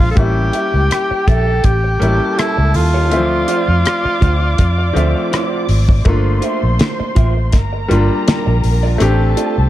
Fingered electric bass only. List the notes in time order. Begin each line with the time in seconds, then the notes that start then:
Already playing: A#1
0.17 A1
0.74 C#2
1.11 muted fingered electric bass stroke
1.28 A#1
1.65 A1
2.02 A1
2.58 C#2
2.75 D#2
3.12 D2
3.68 F2
4.05 muted fingered electric bass stroke
4.22 D2
4.59 F2
4.96 D2
5.69 G#1
6.06 G1
6.63 A#1
7.00 muted fingered electric bass stroke
7.17 A1
7.54 G1
7.91 G1
8.47 A#1
8.65 A#1
9.01 A1
9.58 C2